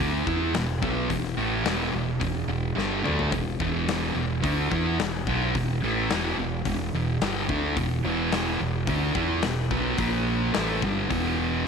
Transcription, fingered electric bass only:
0.00 0.25 D2 medium
0.27 0.53 E2 medium
0.54 0.81 E1 medium
0.82 1.08 B1 medium
1.11 1.37 E1 medium
1.37 1.64 A1 medium
1.65 1.91 E1 medium
1.94 2.19 E1 medium
2.21 2.47 E1 medium
2.48 2.74 E1 medium
2.76 3.02 G1 medium
3.04 3.30 D2 medium
3.32 3.58 E1 medium
3.60 4.12 E1 medium
4.15 4.41 E1 medium
4.44 4.69 D2 medium
4.72 4.97 E2 medium
4.98 5.24 E1 medium
5.27 5.53 B1 medium
5.55 5.80 E1 medium
5.82 6.08 A1 medium
6.11 6.37 E1 loud
6.38 6.63 E1 medium
6.66 6.91 E1 medium
6.93 7.19 E1 medium
7.21 7.47 G1 medium
7.49 7.75 D2 medium
7.77 8.03 E1 medium
8.04 8.56 E1 medium
8.60 8.86 E1 medium
8.87 9.13 D2 medium
9.15 9.42 E2 medium
9.44 9.70 E1 medium
9.71 9.97 B1 medium
9.98 10.51 A#1 medium
10.56 10.81 A1 medium
10.83 11.09 G1 medium
11.11 11.63 E1 medium

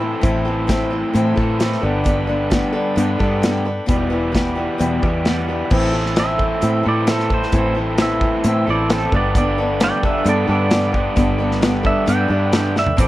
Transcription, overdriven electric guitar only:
0.00 0.22 A2 medium
0.00 0.22 E3 medium
0.00 0.23 C4 medium
0.00 0.23 E4 medium
0.00 0.26 A4 medium
0.23 1.36 A2 loud
0.23 1.37 E3 medium
0.23 1.37 C4 loud
0.23 1.37 E4 loud
0.23 1.36 A4 loud
1.37 1.59 A2 medium
1.37 1.60 E3 medium
1.37 1.60 C4 medium
1.37 1.60 E4 medium
1.37 1.59 A4 medium
1.60 1.82 A2 medium
1.60 1.83 E3 medium
1.60 1.83 C4 medium
1.60 1.83 E4 medium
1.60 1.84 A4 medium
1.83 2.96 G2 medium
1.83 2.96 D3 medium
1.83 2.98 G3 medium
1.83 2.98 B3 loud
1.83 2.97 D4 medium
1.83 2.99 G4 loud
2.97 3.19 G2 medium
2.97 3.19 D3 medium
2.97 3.19 G3 medium
2.97 3.20 B3 medium
2.97 3.19 D4 medium
2.97 3.18 G4 medium
3.19 3.66 G2 medium
3.19 3.65 D3 medium
3.19 3.65 G3 medium
3.19 3.65 B3 medium
3.19 3.65 D4 medium
3.19 3.64 G4 medium
3.89 5.01 E2 loud
3.89 5.02 B2 medium
3.89 5.02 E3 loud
3.89 5.02 G3 loud
3.89 5.03 B3 medium
3.89 5.02 G4 loud
5.03 5.24 E2 medium
5.03 5.24 B2 medium
5.03 5.25 E3 medium
5.03 5.25 G3 medium
5.03 5.25 B3 medium
5.03 5.24 G4 medium
5.25 5.70 E2 medium
5.25 5.70 B2 medium
5.25 5.70 E3 medium
5.25 5.71 G3 medium
5.25 5.71 B3 medium
5.25 5.71 G4 medium
5.71 6.84 A2 medium
5.71 6.84 E3 loud
5.71 6.85 C4 medium
5.71 6.84 E4 loud
5.71 6.84 A4 loud
6.85 7.06 A2 medium
6.85 7.07 E3 medium
6.85 7.07 C4 medium
6.85 7.07 E4 medium
6.85 7.10 A4 medium
7.07 7.52 A2 medium
7.07 7.52 E3 medium
7.07 7.53 C4 medium
7.07 7.53 E4 medium
7.07 7.55 A4 medium
7.53 8.65 A2 medium
7.53 8.66 E3 loud
7.53 8.66 C4 loud
7.53 8.66 E4 loud
7.53 8.66 A4 loud
8.67 8.88 A2 medium
8.67 8.89 E3 medium
8.67 8.89 C4 medium
8.67 8.89 E4 medium
8.67 8.92 A4 medium
8.90 9.11 A2 medium
8.90 9.12 E3 medium
8.90 9.12 C4 medium
8.90 9.12 E4 medium
8.90 9.14 A4 medium
9.12 10.25 G2 medium
9.12 10.25 D3 loud
9.12 10.26 G3 medium
9.12 10.27 B3 loud
9.12 10.27 D4 medium
9.12 10.28 G4 loud
10.25 10.47 G2 medium
10.25 10.48 D3 medium
10.25 10.48 G3 medium
10.25 10.48 B3 medium
10.25 10.48 D4 medium
10.25 10.47 G4 medium
10.48 10.92 G2 medium
10.48 10.93 D3 medium
10.48 10.94 G3 medium
10.48 10.93 B3 medium
10.48 10.93 D4 medium
10.48 10.93 G4 medium
10.93 12.05 G2 medium
10.93 12.06 D3 medium
10.93 12.07 G3 loud
10.93 12.07 B3 medium
10.93 12.07 D4 medium
10.93 12.07 G4 medium
12.07 12.29 G2 medium
12.07 12.29 D3 medium
12.07 12.29 G3 medium
12.07 12.30 B3 medium
12.07 12.29 D4 medium
12.07 12.29 G4 medium
12.30 12.76 G2 medium
12.30 12.76 D3 medium
12.30 12.75 G3 medium
12.30 12.75 B3 medium
12.30 12.75 D4 medium
12.30 12.74 G4 medium
12.97 13.08 A2 medium
12.97 13.08 E3 medium
12.97 13.08 C4 loud
12.97 13.08 E4 loud
12.97 13.08 A4 loud

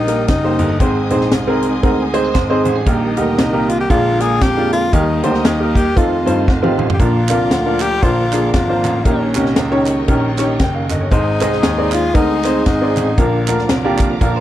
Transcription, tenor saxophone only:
0.00 0.27 D#4 medium
0.28 0.76 D#4 medium
0.80 1.28 C4 medium
2.87 3.71 D#4 medium
3.69 3.80 F4 loud
3.80 3.90 G4 medium
3.90 4.22 F4 loud
4.21 4.44 G#4 loud
4.42 4.72 G4 loud
4.73 4.95 F4 loud
4.94 5.24 D#4 medium
5.24 5.77 D#4 medium
5.76 5.98 G4 medium
5.97 6.48 F4 medium
6.93 7.02 G4 medium
7.00 7.83 F4 medium
7.81 8.04 G4 loud
8.02 8.53 F4 medium
8.53 9.06 F4 medium
9.05 9.57 C#4 medium
11.12 11.95 D#4 medium
11.94 12.16 F4 medium
12.15 12.66 D#4 medium
12.67 13.20 D#4 medium
13.19 13.70 A#3 medium

